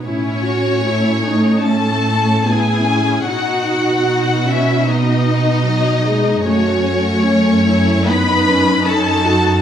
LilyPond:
<<
  \new Staff \with { instrumentName = "Violin section" } { \time 4/4 \key a \lydian \tempo 4 = 75 cis''2 a''4 gis''4 | fis''4. e''8 dis''2 | cis''2 b''4 a''4 | }
  \new Staff \with { instrumentName = "Violin section" } { \time 4/4 \key a \lydian cis'2 a'4 gis'4 | fis'4. e'8 dis'2 | cis'2 b'4 a'4 | }
  \new Staff \with { instrumentName = "Viola section" } { \time 4/4 \key a \lydian << { e'8 fis'8 e'8 dis'8 cis'4 e'4 | fis'2 dis'2 | fis'4 cis'8 e'8 dis'4 cis'8 fis'8 | } \\ { cis'4 a4 a4 b8 cis'8 | dis'4 dis'8 cis'8 b4 fis8 gis8 | a8 a4. b8 cis'8 dis'4 | } >> }
  \new Staff \with { instrumentName = "Cello section" } { \clef bass \time 4/4 \key a \lydian a,1 | b,1 | fis,1 | }
>>